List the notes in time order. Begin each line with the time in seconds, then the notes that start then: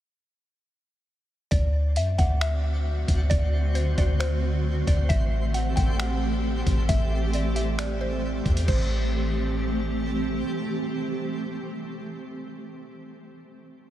1.51 D2 D3 A3 C4 F#4 D5, kick, closed hi-hat
1.96 F#2 E5, closed hi-hat
2.18 D2 F#5, kick, closed hi-hat
2.41 E5, finger snap, closed hi-hat
3.08 D2, kick, closed hi-hat
3.30 D2 C5 D5, kick, closed hi-hat
3.75 C5, closed hi-hat
3.98 D2 D5, kick, closed hi-hat
4.20 C5, finger snap, closed hi-hat
4.87 D2 D5, kick, closed hi-hat
5.09 A1 E3 A3 G4 E5, kick, closed hi-hat
5.54 F#5, closed hi-hat
5.76 A1 G5, kick, closed hi-hat
5.99 F#5, finger snap, closed hi-hat
6.67 A1, kick, closed hi-hat
6.89 A1 E5, kick, closed hi-hat
7.33 D5, closed hi-hat
7.56 E5, closed hi-hat
7.79 D5, finger snap, closed hi-hat
8.01 C5
8.46 E2, kick, closed hi-hat
8.57 closed hi-hat
8.68 A1 E3 A3 C4 G4 C5, kick, crash